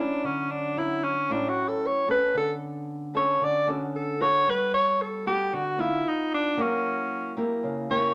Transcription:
0.00 0.72 F#3 medium
0.00 0.72 C#4 medium
0.00 0.27 D4 medium
0.00 0.73 E4 medium
0.24 1.27 D3 medium
0.24 0.52 C#4 medium
0.51 0.80 D4 medium
0.77 1.11 F#3 medium
0.77 1.11 C#4 medium
0.77 1.11 E4 medium
0.77 1.05 E4 medium
1.04 1.34 C#4 medium
1.29 2.32 A2 medium
1.29 2.05 F#3 medium
1.29 2.05 C#4 medium
1.29 1.50 D4 medium
1.29 2.05 E4 medium
1.49 1.70 F#4 medium
1.68 1.88 A4 medium
1.86 2.10 C#5 medium
2.08 3.10 B3 medium
2.08 3.10 C#4 medium
2.08 3.10 A4 medium
2.08 2.34 B4 loud
2.34 3.38 D3 medium
2.34 2.53 A4 medium
3.14 3.63 B3 medium
3.14 3.63 C#4 medium
3.14 3.63 A4 medium
3.14 3.45 C#5 medium
3.41 4.44 D3 medium
3.41 3.69 D5 loud
3.67 4.16 B3 medium
3.67 4.16 C#4 medium
3.67 3.86 F#4 soft
3.67 4.16 A4 medium
3.96 4.23 A4 medium
4.20 5.22 B3 medium
4.20 5.21 F#4 medium
4.20 5.22 A4 medium
4.20 4.51 C#5 loud
4.47 5.50 G3 medium
4.47 4.73 B4 medium
4.74 5.03 C#5 loud
5.01 5.27 A4 medium
5.26 5.74 B3 medium
5.26 5.74 F#4 medium
5.26 5.56 G4 medium
5.26 5.75 A4 medium
5.53 6.02 D3 medium
5.53 5.81 F#4 medium
5.78 6.53 B3 medium
5.78 6.53 D#4 medium
5.78 6.10 E4 medium
5.78 6.54 F4 medium
6.08 6.33 D#4 medium
6.35 6.63 D4 medium
6.57 7.60 F#3 medium
6.57 7.32 A#3 medium
6.57 7.32 E4 soft
6.57 7.33 G4 medium
6.61 7.38 C#4 medium
7.37 7.85 A#3 medium
7.37 7.85 E4 medium
7.37 7.86 G4 medium
7.63 8.14 C#3 medium
7.90 8.14 A#3 medium
7.90 8.14 E4 medium
7.90 8.14 G4 medium
7.90 8.14 C#5 medium

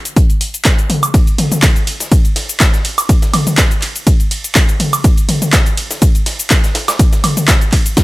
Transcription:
0.05 closed hi-hat medium
0.05 shaker medium
0.16 kick loud
0.16 closed hi-hat medium
0.16 shaker medium
0.30 closed hi-hat soft
0.30 shaker soft
0.41 closed hi-hat medium
0.41 open hi-hat loud
0.54 closed hi-hat medium
0.54 shaker medium
0.65 kick loud
0.65 snare loud
0.65 clap loud
0.65 closed hi-hat medium
0.65 shaker medium
0.79 closed hi-hat soft
0.79 shaker soft
0.90 closed hi-hat medium
0.90 open hi-hat loud
0.90 mid tom medium
1.03 closed hi-hat medium
1.03 high woodblock medium
1.03 shaker medium
1.14 kick loud
1.14 closed hi-hat medium
1.14 ride medium
1.14 shaker medium
1.27 closed hi-hat soft
1.27 shaker soft
1.38 closed hi-hat medium
1.38 open hi-hat loud
1.38 mid tom medium
1.38 ride medium
1.52 closed hi-hat medium
1.52 mid tom medium
1.52 shaker medium
1.62 kick loud
1.62 snare loud
1.62 clap loud
1.62 closed hi-hat medium
1.62 ride medium
1.62 shaker medium
1.76 closed hi-hat soft
1.76 shaker soft
1.87 closed hi-hat medium
1.87 open hi-hat loud
1.87 ride medium
2.00 snare medium
2.00 closed hi-hat medium
2.00 shaker medium
2.12 kick loud
2.12 closed hi-hat medium
2.12 ride medium
2.12 shaker medium
2.25 closed hi-hat soft
2.25 shaker soft
2.36 snare soft
2.36 open hi-hat medium
2.36 open hi-hat loud
2.36 ride medium
2.49 closed hi-hat medium
2.49 shaker medium
2.60 kick loud
2.60 snare loud
2.60 clap loud
2.60 closed hi-hat loud
2.60 closed hi-hat medium
2.60 ride medium
2.60 shaker medium
2.74 snare soft
2.74 closed hi-hat soft
2.74 shaker soft
2.85 closed hi-hat medium
2.85 open hi-hat loud
2.85 ride medium
2.98 closed hi-hat soft
2.98 closed hi-hat medium
2.98 high woodblock medium
2.98 shaker medium
3.09 kick loud
3.09 closed hi-hat medium
3.09 ride medium
3.09 shaker medium
3.22 snare soft
3.22 closed hi-hat soft
3.22 shaker soft
3.33 closed hi-hat medium
3.33 open hi-hat loud
3.33 mid tom medium
3.33 ride medium
3.33 high woodblock medium
3.47 closed hi-hat medium
3.47 mid tom medium
3.47 shaker medium
3.57 kick loud
3.57 snare loud
3.57 clap loud
3.57 closed hi-hat loud
3.57 closed hi-hat medium
3.57 ride medium
3.57 shaker medium
3.71 closed hi-hat soft
3.71 shaker soft
3.82 clap soft
3.82 closed hi-hat medium
3.82 open hi-hat loud
3.82 ride medium
3.96 closed hi-hat medium
3.96 shaker medium
4.07 kick loud
4.07 closed hi-hat medium
4.07 ride medium
4.07 shaker medium
4.20 closed hi-hat soft
4.20 shaker soft
4.31 closed hi-hat medium
4.31 open hi-hat loud
4.31 ride medium
4.44 closed hi-hat medium
4.44 shaker medium
4.55 kick loud
4.55 snare loud
4.55 clap loud
4.55 closed hi-hat medium
4.55 ride medium
4.55 shaker medium
4.69 closed hi-hat soft
4.69 shaker soft
4.80 closed hi-hat medium
4.80 open hi-hat loud
4.80 mid tom medium
4.80 ride medium
4.93 closed hi-hat medium
4.93 high woodblock medium
4.93 shaker medium
5.04 kick loud
5.04 closed hi-hat medium
5.04 ride medium
5.04 shaker medium
5.17 closed hi-hat soft
5.17 shaker soft
5.29 closed hi-hat medium
5.29 open hi-hat loud
5.29 mid tom medium
5.29 ride medium
5.42 closed hi-hat medium
5.42 mid tom medium
5.42 shaker medium
5.53 kick loud
5.53 snare loud
5.53 clap loud
5.53 closed hi-hat medium
5.53 ride medium
5.53 shaker medium
5.66 closed hi-hat soft
5.66 shaker soft
5.77 closed hi-hat medium
5.77 open hi-hat loud
5.77 ride medium
5.91 snare medium
5.91 closed hi-hat medium
5.91 shaker medium
6.02 kick loud
6.02 closed hi-hat medium
6.02 ride medium
6.02 shaker medium
6.15 closed hi-hat soft
6.15 shaker soft
6.26 snare soft
6.26 open hi-hat medium
6.26 open hi-hat loud
6.26 ride medium
6.39 closed hi-hat medium
6.39 shaker medium
6.50 kick loud
6.50 snare loud
6.50 clap loud
6.50 closed hi-hat medium
6.50 ride medium
6.50 shaker medium
6.64 snare soft
6.64 closed hi-hat soft
6.64 shaker soft
6.75 snare loud
6.75 closed hi-hat medium
6.75 open hi-hat loud
6.75 ride medium
6.88 snare loud
6.88 closed hi-hat medium
6.88 high woodblock medium
6.88 shaker medium
6.99 kick loud
6.99 closed hi-hat medium
6.99 ride medium
6.99 shaker medium
7.13 snare soft
7.13 closed hi-hat soft
7.13 shaker soft
7.24 closed hi-hat medium
7.24 open hi-hat loud
7.24 mid tom medium
7.24 ride medium
7.24 high woodblock medium
7.37 closed hi-hat medium
7.37 mid tom medium
7.37 shaker medium
7.48 kick loud
7.48 snare loud
7.48 clap loud
7.48 closed hi-hat medium
7.48 ride medium
7.48 shaker medium
7.61 closed hi-hat soft
7.61 shaker soft
7.72 kick medium
7.72 clap soft
7.72 closed hi-hat medium
7.72 open hi-hat loud
7.72 ride medium
7.86 closed hi-hat medium
7.86 shaker medium
7.97 kick loud
7.97 snare loud
7.97 snare medium
7.97 closed hi-hat medium
7.97 ride medium
7.97 shaker medium

